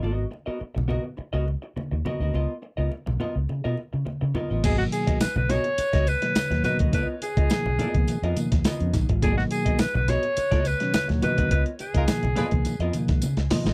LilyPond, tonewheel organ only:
\new Staff \with { instrumentName = "Tonewheel organ" } { \clef bass \time 4/4 \key gis \dorian \tempo 4 = 105 << { r1 | r1 | r1 | r2. <dis b>16 <eis cis'>16 dis'16 <gis eis'>16~ |
<gis eis'>16 r2. r8. | r1 | } \\ { r1 | r1 | <b, dis fis ais>4 r4. r16 <b, dis fis ais>16 r16 <b, dis fis ais>8. | r4 <b, dis eis ais>16 r16 <b, dis eis ais>16 <b, dis eis ais>8 r16 <b, dis eis ais>8 r4 |
<b, dis fis ais>4 r4. r16 <b, dis fis cis'>16 r16 <b, dis fis a ais>8. | r4 <b, dis eis ais>16 r16 <b, dis eis ais>16 <b, dis eis ais>8 r16 <b, dis eis ais>8 r8 <b, dis eis ais>16 r16 | } >> }